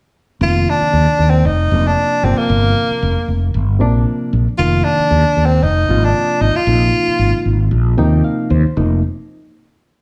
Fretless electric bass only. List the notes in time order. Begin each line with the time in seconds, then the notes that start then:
0.41 F1
0.81 muted fretless electric bass stroke
0.93 D#2
1.19 D#2
1.45 F1
1.71 F1
2.23 G1
2.49 G1
2.90 muted fretless electric bass stroke
3.02 F1
3.28 F1
3.54 G1
3.81 A#1
4.33 A#1
4.47 muted fretless electric bass stroke
4.59 F1
4.99 muted fretless electric bass stroke
5.11 D#2
5.36 D#2
5.63 F1
5.88 G#1
6.41 G#1
6.67 A#1
7.07 muted fretless electric bass stroke
7.19 G#1
7.45 G#1
7.71 A#1
7.98 D#2
8.50 D#2
8.65 muted fretless electric bass stroke
8.77 F1